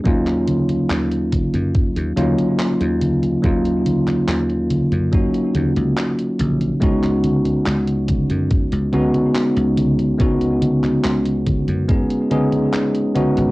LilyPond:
<<
  \new Staff \with { instrumentName = "Tine electric piano" } { \time 4/4 \key ees \minor \tempo 4 = 71 <ges bes des' ees' f'>2~ <ges bes des' ees' f'>8 <ges bes des' ees' f'>8 r4 | <ges bes des' ees' f'>2 <ges bes des' ees' ges'>2 | <aes ces' des' ees' ges'>2~ <aes ces' des' ees' ges'>8 <aes ces' des' ees' ges'>8 r4 | <aes ces' des' ees' ges'>2 <aes ces' des' ees' aes'>8 <aes ces' des' ees' aes'>4 <aes ces' des' ees' ges'>8 | }
  \new Staff \with { instrumentName = "Slap bass" } { \clef bass \time 4/4 \key ees \minor ees,4 ees,8. ges,8 ees,16 ees,16 r8 ees,8. | ees,4 ees,8. ges,8 r16 ees,16 des,16 r8 bes,,8 | des,4 des,8. ges,8 des,16 des,16 r8 des,8. | des,4 des,8. ges,8 r4. aes,,16 | }
  \new DrumStaff \with { instrumentName = "Drums" } \drummode { \time 4/4 <cgho hh bd>16 <hc hh>16 <cgho hh>16 <cgho hh>16 <hc hh>16 hh16 <cgho hh bd>16 <cgho hh>16 <cgho hh bd>16 hh16 <cgho hh>16 <cgho hh>16 <hc cgho hh>16 hh16 <cgho hh>16 <cgho hh>16 | <cgho hh bd>16 hh16 <cgho hh>16 <hc cgho hh>16 <hc hh>16 hh16 <cgho hh>16 <cgho hh>16 <cgho hh bd>16 hh16 <cgho hh>16 <cgho hh>16 <hc cgho hh>16 hh16 <cgho hh>16 <cgho hh>16 | <hh bd>16 <hc hh>16 <cgho hh>16 <cgho hh>16 <hc cgho hh>16 hh16 <cgho hh bd>16 <cgho hh>16 <hh bd>16 hh16 <cgho hh>16 <cgho hh>16 <hc cgho hh>16 hh16 <cgho hh>16 <cgho hh>16 | <hh bd>16 hh16 <cgho hh>16 <hc cgho hh>16 <hc cgho hh>16 hh16 <cgho hh bd>16 <cgho hh>16 <cgho hh bd>16 hh16 <cgho hh>16 <cgho hh>16 <hc cgho hh>16 hh16 <cgho hh>16 <cgho hh>16 | }
>>